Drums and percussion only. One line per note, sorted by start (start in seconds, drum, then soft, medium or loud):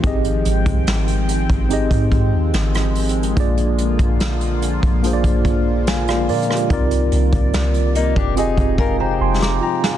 0.04 kick loud
0.04 closed hi-hat medium
0.24 closed hi-hat medium
0.45 closed hi-hat medium
0.66 kick medium
0.66 closed hi-hat medium
0.87 snare loud
0.87 closed hi-hat medium
1.08 closed hi-hat medium
1.29 closed hi-hat medium
1.49 kick loud
1.49 closed hi-hat soft
1.70 closed hi-hat medium
1.91 kick medium
1.91 closed hi-hat medium
2.12 kick loud
2.12 closed hi-hat soft
2.54 snare loud
2.54 closed hi-hat medium
2.74 cross-stick loud
2.74 closed hi-hat medium
2.95 closed hi-hat soft
2.95 open hi-hat medium
3.09 closed hi-hat soft
3.23 closed hi-hat medium
3.37 kick loud
3.37 closed hi-hat medium
3.57 closed hi-hat medium
3.78 closed hi-hat medium
3.99 kick medium
3.99 closed hi-hat medium
4.20 snare loud
4.20 closed hi-hat medium
4.41 closed hi-hat medium
4.62 closed hi-hat medium
4.83 kick loud
4.83 closed hi-hat soft
5.04 closed hi-hat medium
5.24 kick medium
5.24 closed hi-hat medium
5.45 kick loud
5.45 closed hi-hat soft
5.87 snare loud
5.87 closed hi-hat medium
6.08 cross-stick loud
6.08 closed hi-hat medium
6.29 closed hi-hat soft
6.29 open hi-hat medium
6.43 closed hi-hat soft
6.51 cross-stick medium
6.56 closed hi-hat medium
6.70 kick loud
6.70 closed hi-hat medium
6.91 closed hi-hat medium
7.12 closed hi-hat medium
7.33 kick medium
7.33 closed hi-hat medium
7.53 snare loud
7.53 closed hi-hat medium
7.74 closed hi-hat medium
7.95 closed hi-hat medium
8.16 kick loud
8.16 closed hi-hat soft
8.37 closed hi-hat medium
8.57 kick loud
8.57 closed hi-hat medium
8.78 kick loud
8.78 closed hi-hat soft
9.42 snare medium
9.84 snare loud